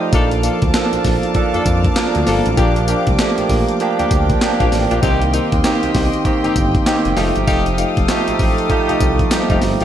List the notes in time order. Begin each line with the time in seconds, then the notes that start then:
Already playing: F3 A3 D#4 F4 G4 A4 D5 D#5 F5 G5 D#6
0.00 D#4 C5
0.12 A#1 F3 A#3 D4 F4 A4 A5 D6, kick, closed hi-hat, tambourine
0.31 closed hi-hat
0.43 A#3 D4 F4 A4, closed hi-hat, tambourine
0.62 D2, kick, closed hi-hat
0.74 F3 A#3 D4 A4, snare, clap, closed hi-hat, tambourine
0.93 A#1, closed hi-hat
1.04 A#1, kick, snare, open hi-hat, tambourine
1.23 closed hi-hat
1.35 F3 A#3 D4 A4, kick, closed hi-hat
1.53 F2 A#3 D4 F4 A4, closed hi-hat
1.66 F2, kick, closed hi-hat, tambourine
1.84 kick, closed hi-hat
1.96 F3 A#3 D4 A#4, snare, clap, closed hi-hat, tambourine
2.15 D2, closed hi-hat
2.27 G1 A#3 D4 F4 A4, snare, open hi-hat, tambourine
2.46 A1, closed hi-hat
2.57 A#1 F3 A#3 D4 F4 G4 G5, kick, closed hi-hat, tambourine
2.76 closed hi-hat
2.88 A#3 D4 F4 G4, closed hi-hat, tambourine
3.07 C2, kick, closed hi-hat
3.19 F3 A3 D4 G4, snare, clap, closed hi-hat, tambourine
3.26 A#3
3.38 A#1, closed hi-hat
3.49 A#1, kick, open hi-hat, tambourine
3.69 closed hi-hat
3.80 F3 A#3 D4 G4, closed hi-hat
3.99 D2 A#3 D4 F4 G4, closed hi-hat
4.11 D2, kick, closed hi-hat, tambourine
4.30 kick, closed hi-hat
4.41 F3 A#3 D4 G4, snare, clap, closed hi-hat, tambourine
4.60 A#1 A#3 D4 F4 G4, kick, closed hi-hat
4.72 A1, snare, open hi-hat, tambourine
4.91 A#1 A#3 D4 F4 G4, closed hi-hat
5.02 C2 D#3 A#3 C4 D#4 G4 D#5 C6, kick, closed hi-hat, tambourine
5.22 closed hi-hat
5.33 A#3 C4 D#4 G4, closed hi-hat, tambourine
5.52 D#2, kick, closed hi-hat
5.64 D#3 A#3 C4 G4, snare, clap, closed hi-hat, tambourine
5.83 C2, closed hi-hat
5.95 C2, kick, snare, open hi-hat, tambourine
6.14 closed hi-hat
6.25 D#3 A#3 C4 G4, kick, closed hi-hat
6.44 G1 A#3 C4 D#4 G4, closed hi-hat
6.56 G1, kick, closed hi-hat, tambourine
6.75 kick, closed hi-hat
6.86 D#3 A#3 C4 G4, snare, clap, closed hi-hat, tambourine
7.05 F1, closed hi-hat
7.17 F1 F3 G#3 A3 D#4 F4 G4 A4 F5 D#6, snare, open hi-hat, tambourine
7.24 A3
7.36 G1, closed hi-hat
7.47 F1 A3 D#4 F4 G4, kick, closed hi-hat, tambourine
7.66 closed hi-hat
7.78 A3 D#4 F4 G4, closed hi-hat, tambourine
7.97 F1, kick, closed hi-hat
8.09 F3 A3 D#4 G4, snare, clap, closed hi-hat, tambourine
8.28 A1, closed hi-hat
8.39 A1, kick, open hi-hat, tambourine
8.58 closed hi-hat
8.70 F3 A3 D#4 G4, kick, closed hi-hat
8.88 C2 A3 D#4 F4 G4, closed hi-hat
9.00 C2, kick, closed hi-hat, tambourine
9.19 kick, closed hi-hat
9.31 F3 G3 D#4 G4, snare, clap, closed hi-hat, tambourine
9.38 A3
9.50 F1 A3 D#4 F4 G4, kick, closed hi-hat
9.62 G1, snare, open hi-hat, tambourine
9.80 A1 A3 D#4 F4 G4, closed hi-hat